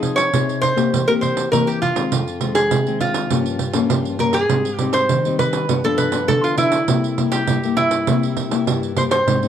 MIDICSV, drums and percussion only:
0, 0, Header, 1, 2, 480
1, 0, Start_track
1, 0, Tempo, 595829
1, 1706, Time_signature, 4, 2, 24, 8
1, 7637, End_track
2, 0, Start_track
2, 0, Title_t, "Pandeiro"
2, 21, Note_on_c, 9, 54, 53
2, 102, Note_off_c, 9, 54, 0
2, 142, Note_on_c, 9, 54, 67
2, 222, Note_off_c, 9, 54, 0
2, 270, Note_on_c, 9, 54, 78
2, 350, Note_off_c, 9, 54, 0
2, 397, Note_on_c, 9, 54, 30
2, 477, Note_off_c, 9, 54, 0
2, 508, Note_on_c, 9, 54, 58
2, 588, Note_off_c, 9, 54, 0
2, 624, Note_on_c, 9, 54, 54
2, 705, Note_off_c, 9, 54, 0
2, 755, Note_on_c, 9, 54, 70
2, 836, Note_off_c, 9, 54, 0
2, 874, Note_on_c, 9, 54, 36
2, 955, Note_off_c, 9, 54, 0
2, 987, Note_on_c, 9, 54, 54
2, 1067, Note_off_c, 9, 54, 0
2, 1103, Note_on_c, 9, 54, 64
2, 1183, Note_off_c, 9, 54, 0
2, 1233, Note_on_c, 9, 54, 68
2, 1314, Note_off_c, 9, 54, 0
2, 1354, Note_on_c, 9, 54, 32
2, 1435, Note_off_c, 9, 54, 0
2, 1468, Note_on_c, 9, 54, 52
2, 1549, Note_off_c, 9, 54, 0
2, 1580, Note_on_c, 9, 54, 63
2, 1660, Note_off_c, 9, 54, 0
2, 1707, Note_on_c, 9, 54, 74
2, 1788, Note_off_c, 9, 54, 0
2, 1833, Note_on_c, 9, 54, 31
2, 1914, Note_off_c, 9, 54, 0
2, 1939, Note_on_c, 9, 54, 58
2, 2019, Note_off_c, 9, 54, 0
2, 2054, Note_on_c, 9, 54, 67
2, 2134, Note_off_c, 9, 54, 0
2, 2183, Note_on_c, 9, 54, 77
2, 2264, Note_off_c, 9, 54, 0
2, 2309, Note_on_c, 9, 54, 29
2, 2389, Note_off_c, 9, 54, 0
2, 2420, Note_on_c, 9, 54, 57
2, 2501, Note_off_c, 9, 54, 0
2, 2532, Note_on_c, 9, 54, 66
2, 2613, Note_off_c, 9, 54, 0
2, 2662, Note_on_c, 9, 54, 68
2, 2743, Note_off_c, 9, 54, 0
2, 2785, Note_on_c, 9, 54, 34
2, 2865, Note_off_c, 9, 54, 0
2, 2893, Note_on_c, 9, 54, 51
2, 2973, Note_off_c, 9, 54, 0
2, 3009, Note_on_c, 9, 54, 65
2, 3089, Note_off_c, 9, 54, 0
2, 3140, Note_on_c, 9, 54, 80
2, 3221, Note_off_c, 9, 54, 0
2, 3266, Note_on_c, 9, 54, 31
2, 3346, Note_off_c, 9, 54, 0
2, 3375, Note_on_c, 9, 54, 52
2, 3456, Note_off_c, 9, 54, 0
2, 3487, Note_on_c, 9, 54, 62
2, 3568, Note_off_c, 9, 54, 0
2, 3621, Note_on_c, 9, 54, 74
2, 3701, Note_off_c, 9, 54, 0
2, 3746, Note_on_c, 9, 54, 35
2, 3827, Note_off_c, 9, 54, 0
2, 3855, Note_on_c, 9, 54, 60
2, 3936, Note_off_c, 9, 54, 0
2, 3970, Note_on_c, 9, 54, 62
2, 4050, Note_off_c, 9, 54, 0
2, 4102, Note_on_c, 9, 54, 68
2, 4183, Note_off_c, 9, 54, 0
2, 4230, Note_on_c, 9, 54, 33
2, 4311, Note_off_c, 9, 54, 0
2, 4342, Note_on_c, 9, 54, 60
2, 4423, Note_off_c, 9, 54, 0
2, 4454, Note_on_c, 9, 54, 61
2, 4534, Note_off_c, 9, 54, 0
2, 4584, Note_on_c, 9, 54, 67
2, 4665, Note_off_c, 9, 54, 0
2, 4705, Note_on_c, 9, 54, 37
2, 4786, Note_off_c, 9, 54, 0
2, 4817, Note_on_c, 9, 54, 54
2, 4897, Note_off_c, 9, 54, 0
2, 4930, Note_on_c, 9, 54, 64
2, 5010, Note_off_c, 9, 54, 0
2, 5062, Note_on_c, 9, 54, 75
2, 5143, Note_off_c, 9, 54, 0
2, 5191, Note_on_c, 9, 54, 29
2, 5272, Note_off_c, 9, 54, 0
2, 5297, Note_on_c, 9, 54, 54
2, 5378, Note_off_c, 9, 54, 0
2, 5411, Note_on_c, 9, 54, 66
2, 5491, Note_off_c, 9, 54, 0
2, 5542, Note_on_c, 9, 54, 75
2, 5623, Note_off_c, 9, 54, 0
2, 5672, Note_on_c, 9, 54, 32
2, 5752, Note_off_c, 9, 54, 0
2, 5783, Note_on_c, 9, 54, 58
2, 5864, Note_off_c, 9, 54, 0
2, 5894, Note_on_c, 9, 54, 63
2, 5975, Note_off_c, 9, 54, 0
2, 6021, Note_on_c, 9, 54, 70
2, 6101, Note_off_c, 9, 54, 0
2, 6150, Note_on_c, 9, 54, 34
2, 6231, Note_off_c, 9, 54, 0
2, 6257, Note_on_c, 9, 54, 55
2, 6338, Note_off_c, 9, 54, 0
2, 6372, Note_on_c, 9, 54, 58
2, 6453, Note_off_c, 9, 54, 0
2, 6503, Note_on_c, 9, 54, 75
2, 6583, Note_off_c, 9, 54, 0
2, 6631, Note_on_c, 9, 54, 36
2, 6712, Note_off_c, 9, 54, 0
2, 6739, Note_on_c, 9, 54, 53
2, 6820, Note_off_c, 9, 54, 0
2, 6859, Note_on_c, 9, 54, 58
2, 6939, Note_off_c, 9, 54, 0
2, 6987, Note_on_c, 9, 54, 73
2, 7067, Note_off_c, 9, 54, 0
2, 7113, Note_on_c, 9, 54, 31
2, 7194, Note_off_c, 9, 54, 0
2, 7222, Note_on_c, 9, 54, 60
2, 7303, Note_off_c, 9, 54, 0
2, 7340, Note_on_c, 9, 54, 69
2, 7420, Note_off_c, 9, 54, 0
2, 7473, Note_on_c, 9, 54, 73
2, 7553, Note_off_c, 9, 54, 0
2, 7595, Note_on_c, 9, 54, 31
2, 7637, Note_off_c, 9, 54, 0
2, 7637, End_track
0, 0, End_of_file